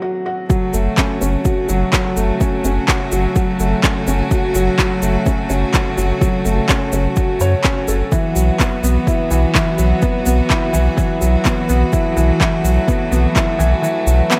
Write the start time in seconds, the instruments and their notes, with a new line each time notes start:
Already playing: felt piano F#3 A3 F#4
0.02 felt piano F#4
0.26 felt piano F#4
0.49 string quartet C#3 F#3 A3 F#4, felt piano F#3, kick, shaker
0.73 sub bass F#1, felt piano A3, shaker
0.97 felt piano C#4, kick, clap, shaker
1.21 sub bass F#1, felt piano C#4, shaker
1.45 felt piano F#4, kick, shaker
1.69 sub bass F#1, felt piano F#3, shaker
1.93 felt piano F#3, kick, clap, shaker
2.17 sub bass F#1, felt piano A3, shaker
2.41 felt piano C#4, kick, shaker
2.64 sub bass F#1, felt piano C#4, shaker
2.88 felt piano F#4, kick, clap, shaker
3.12 sub bass F#1, felt piano F#3, shaker
3.36 felt piano F#3, kick, shaker
3.60 sub bass F#1, felt piano A3, shaker
3.83 felt piano C#4, kick, clap, shaker
4.07 sub bass F#1, felt piano C#4, shaker
4.31 felt piano F#4, kick, shaker
4.55 sub bass F#1, felt piano F#3, shaker
4.79 felt piano F#3, kick, clap, shaker
5.02 sub bass F#1, felt piano A3, shaker
5.26 felt piano C#4, kick, shaker
5.50 sub bass F#1, felt piano C#4, shaker
5.74 felt piano F#4, kick, clap, shaker
5.97 sub bass F#1, felt piano F#3, shaker
6.21 felt piano F#3, kick, shaker
6.45 sub bass F#1, felt piano A3, shaker
6.69 felt piano C#4, kick, clap, shaker
6.92 sub bass F#1, felt piano C#4, shaker
7.16 felt piano F#4, kick, shaker
7.40 sub bass F#2, felt piano C#5, shaker
7.64 felt piano C#4, kick, clap, shaker
7.88 sub bass F#1, felt piano A4, shaker
8.11 string quartet E3 F#3 B3 F#4, felt piano E3, kick, shaker
8.35 sub bass B1, felt piano F#3, shaker
8.59 felt piano B3, kick, clap, shaker
8.83 sub bass B1, felt piano B3, shaker
9.07 felt piano E4, kick, shaker
9.31 sub bass B1, felt piano E3, shaker
9.55 felt piano E3, kick, clap, shaker
9.78 sub bass B1, felt piano F#3, shaker
10.02 felt piano B3, kick, shaker
10.26 sub bass B1, felt piano B3, shaker
10.49 felt piano E4, kick, clap, shaker
10.73 sub bass B1, felt piano E3, shaker
10.97 felt piano E3, kick, shaker
11.21 sub bass B1, felt piano F#3, shaker
11.45 felt piano B3, kick, clap, shaker
11.69 sub bass B1, felt piano B3, shaker
11.93 string quartet A3, felt piano E4, kick, shaker
12.16 sub bass B1, felt piano E3, shaker
12.40 felt piano E3, kick, clap, shaker
12.64 sub bass B1, felt piano F#3, shaker
12.87 felt piano B3, kick, shaker
13.11 sub bass B1, felt piano B3, shaker
13.36 felt piano E4, kick, clap, shaker
13.59 sub bass B1, felt piano E3, shaker
13.82 felt piano E3, shaker
14.07 sub bass B1, felt piano F#3, shaker
14.30 felt piano B3, clap, shaker